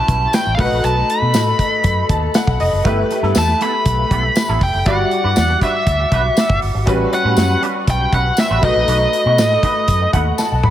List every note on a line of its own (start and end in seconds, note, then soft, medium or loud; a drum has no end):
0.00 0.55 F#3 medium
0.00 0.55 G3 medium
0.00 0.58 C#4 medium
0.00 0.55 E4 medium
0.00 0.56 B4 medium
0.00 0.55 E5 medium
0.00 0.35 A5 loud
0.00 4.82 B5 medium
0.00 0.57 C#6 medium
0.08 0.26 B1 medium
0.08 kick loud
0.08 closed hi-hat medium
0.33 0.54 G5 medium
0.33 snare loud
0.33 closed hi-hat medium
0.33 tambourine medium
0.46 0.55 A1 medium
0.55 2.55 A3 medium
0.55 2.56 D#4 medium
0.55 2.83 A4 medium
0.55 2.57 D#5 medium
0.55 0.60 F5 medium
0.59 0.67 B1 loud
0.59 2.56 F#4 medium
0.59 2.56 B4 medium
0.59 0.85 F#5 medium
0.59 kick loud
0.59 open hi-hat medium
0.72 0.80 A#1 medium
0.84 1.01 B1 loud
0.84 1.11 A5 loud
0.84 closed hi-hat loud
1.10 2.06 B5 loud
1.10 closed hi-hat medium
1.22 1.35 B2 medium
1.34 1.52 A2 medium
1.34 snare loud
1.34 closed hi-hat medium
1.34 tambourine medium
1.59 kick medium
1.59 closed hi-hat medium
1.84 2.02 F#2 medium
1.84 kick medium
1.84 closed hi-hat loud
2.09 2.27 D#2 medium
2.09 2.33 A5 medium
2.09 kick loud
2.09 closed hi-hat medium
2.34 2.58 F#5 medium
2.34 snare loud
2.34 closed hi-hat medium
2.34 tambourine medium
2.47 2.56 B1 medium
2.47 kick medium
2.60 2.69 F1 medium
2.60 2.84 D#5 medium
2.60 open hi-hat medium
2.73 2.81 F#1 medium
2.84 3.02 G1 loud
2.84 3.05 G3 medium
2.84 4.82 A3 medium
2.84 2.98 B3 medium
2.84 4.82 E4 medium
2.84 2.98 E4 medium
2.84 4.83 G4 medium
2.84 4.56 A4 medium
2.84 2.97 A4 medium
2.84 4.83 B4 medium
2.84 4.84 E5 medium
2.84 kick loud
2.84 closed hi-hat loud
2.98 muted clean electric guitar stroke medium
3.11 muted clean electric guitar stroke soft
3.11 snare soft
3.11 closed hi-hat medium
3.23 3.31 G2 loud
3.23 3.35 G3 medium
3.23 3.35 B3 medium
3.23 3.36 E4 medium
3.23 3.36 A4 medium
3.23 snare soft
3.35 3.53 E2 medium
3.35 3.63 A5 loud
3.35 muted clean electric guitar stroke soft
3.35 snare loud
3.35 closed hi-hat medium
3.35 tambourine medium
3.49 muted clean electric guitar stroke soft
3.49 snare soft
3.61 3.80 G3 medium
3.61 3.73 B3 medium
3.61 3.72 E4 medium
3.61 3.72 A4 medium
3.61 4.65 B5 loud
3.61 closed hi-hat medium
3.73 muted clean electric guitar stroke soft
3.86 4.03 B1 medium
3.86 kick medium
3.86 closed hi-hat medium
3.98 muted clean electric guitar stroke soft
4.11 4.28 B1 medium
4.11 4.31 G3 medium
4.11 4.24 B3 medium
4.11 4.23 E4 medium
4.11 4.23 A4 medium
4.11 kick loud
4.11 closed hi-hat medium
4.24 muted clean electric guitar stroke soft
4.36 muted clean electric guitar stroke soft
4.36 snare loud
4.36 closed hi-hat medium
4.36 tambourine medium
4.49 4.57 A1 medium
4.49 4.61 G3 medium
4.49 4.61 B3 medium
4.49 4.62 E4 medium
4.49 4.62 A4 medium
4.61 4.70 F1 medium
4.61 4.86 G5 medium
4.61 muted clean electric guitar stroke soft
4.61 kick medium
4.61 open hi-hat medium
4.74 4.83 F#1 medium
4.74 muted clean electric guitar stroke medium
4.85 5.03 G1 loud
4.85 6.83 G3 medium
4.85 5.06 G3 medium
4.85 5.00 D4 medium
4.85 6.83 E4 medium
4.85 6.83 F#4 medium
4.85 8.60 F#4 medium
4.85 4.99 F#4 medium
4.85 4.99 B4 medium
4.85 6.84 D5 medium
4.85 8.60 F#5 medium
4.85 5.58 F#5 medium
4.85 6.86 D6 medium
4.85 kick loud
4.85 closed hi-hat loud
5.00 muted clean electric guitar stroke soft
5.11 muted clean electric guitar stroke soft
5.11 closed hi-hat medium
5.24 5.33 G2 loud
5.24 5.35 G3 medium
5.24 5.36 D4 medium
5.24 5.36 F#4 medium
5.24 5.36 B4 medium
5.36 5.54 E2 loud
5.36 muted clean electric guitar stroke soft
5.36 snare loud
5.36 closed hi-hat medium
5.36 tambourine medium
5.49 muted clean electric guitar stroke soft
5.49 snare soft
5.61 5.81 G3 medium
5.61 5.74 D4 medium
5.61 5.74 F#4 loud
5.61 5.73 B4 loud
5.61 6.59 E5 medium
5.61 kick medium
5.61 closed hi-hat medium
5.74 muted clean electric guitar stroke soft
5.87 6.04 D2 loud
5.87 kick medium
5.87 closed hi-hat loud
6.00 muted clean electric guitar stroke soft
6.12 6.29 B1 medium
6.12 6.32 G3 medium
6.12 6.24 D4 medium
6.12 6.24 F#4 loud
6.12 6.23 B4 loud
6.12 kick medium
6.12 closed hi-hat medium
6.25 muted clean electric guitar stroke soft
6.37 muted clean electric guitar stroke soft
6.37 snare loud
6.37 closed hi-hat medium
6.37 tambourine medium
6.49 6.58 G1 medium
6.49 muted clean electric guitar stroke soft
6.49 kick loud
6.62 6.71 G1 loud
6.62 open hi-hat medium
6.74 6.83 G#1 medium
6.74 muted clean electric guitar stroke soft
6.86 7.05 A1 loud
6.86 8.59 G3 medium
6.86 7.07 G3 medium
6.86 8.59 C#4 medium
6.86 6.98 C#4 medium
6.86 8.60 F#4 medium
6.86 6.98 F#4 loud
6.86 6.97 B4 loud
6.86 8.60 B4 medium
6.86 10.70 B5 medium
6.86 8.61 C#6 medium
6.86 kick loud
6.86 closed hi-hat loud
6.99 muted clean electric guitar stroke medium
7.12 7.60 F#5 loud
7.12 muted clean electric guitar stroke soft
7.12 snare soft
7.12 closed hi-hat medium
7.24 7.33 A2 loud
7.24 7.35 G3 medium
7.24 7.36 C#4 medium
7.24 7.36 F#4 medium
7.24 7.37 B4 medium
7.37 7.54 F#2 medium
7.37 muted clean electric guitar stroke soft
7.37 snare loud
7.37 closed hi-hat medium
7.37 tambourine medium
7.50 muted clean electric guitar stroke soft
7.62 7.82 G3 medium
7.62 7.76 C#4 loud
7.62 7.75 F#4 loud
7.62 7.74 B4 loud
7.62 closed hi-hat medium
7.75 muted clean electric guitar stroke soft
7.87 8.05 B1 medium
7.87 8.14 G5 loud
7.87 kick loud
7.87 closed hi-hat medium
8.00 muted clean electric guitar stroke medium
8.12 8.30 B1 medium
8.12 8.33 G3 medium
8.12 8.26 C#4 medium
8.12 8.25 F#4 medium
8.12 8.24 B4 medium
8.12 8.39 F#5 loud
8.12 kick medium
8.12 closed hi-hat medium
8.26 muted clean electric guitar stroke medium
8.37 8.62 E5 loud
8.37 muted clean electric guitar stroke soft
8.37 snare loud
8.37 closed hi-hat medium
8.37 tambourine medium
8.50 8.59 A1 medium
8.50 8.63 G3 medium
8.50 8.63 C#4 medium
8.50 8.63 F#4 medium
8.50 8.64 B4 medium
8.61 8.72 B1 loud
8.61 10.59 A3 medium
8.61 10.60 D#4 medium
8.61 10.60 F#4 medium
8.61 10.70 A4 medium
8.61 10.60 B4 medium
8.61 10.61 D#5 medium
8.61 10.11 D#5 medium
8.61 muted clean electric guitar stroke soft
8.61 kick loud
8.61 crash medium
8.75 8.84 A#1 medium
8.75 muted clean electric guitar stroke soft
8.88 9.05 B1 loud
8.88 9.08 A3 medium
8.88 9.00 D#4 medium
8.88 9.00 F#4 medium
8.88 8.99 B4 medium
8.88 closed hi-hat loud
9.01 muted clean electric guitar stroke soft
9.13 muted clean electric guitar stroke soft
9.13 closed hi-hat medium
9.26 9.39 B2 loud
9.26 9.37 A3 medium
9.26 9.38 D#4 medium
9.26 9.38 F#4 medium
9.26 9.38 B4 medium
9.38 9.56 A2 medium
9.38 muted clean electric guitar stroke soft
9.38 snare loud
9.38 closed hi-hat medium
9.38 tambourine medium
9.51 muted clean electric guitar stroke soft
9.51 snare soft
9.63 9.83 A3 medium
9.63 9.76 D#4 medium
9.63 9.75 F#4 medium
9.63 9.75 B4 medium
9.63 kick medium
9.63 closed hi-hat medium
9.76 muted clean electric guitar stroke medium
9.88 10.06 F#2 medium
9.88 kick medium
9.88 closed hi-hat medium
10.01 muted clean electric guitar stroke soft
10.13 10.31 D#2 loud
10.13 10.34 A3 medium
10.13 10.26 D#4 medium
10.13 10.26 F#4 medium
10.13 10.25 B4 medium
10.13 10.37 F#5 medium
10.13 kick loud
10.13 closed hi-hat medium
10.26 muted clean electric guitar stroke soft
10.38 10.62 A5 medium
10.38 muted clean electric guitar stroke soft
10.38 snare medium
10.38 tambourine medium
10.51 10.60 B1 medium
10.51 muted clean electric guitar stroke soft
10.63 10.70 F1 medium
10.63 10.70 B5 medium
10.63 mid tom loud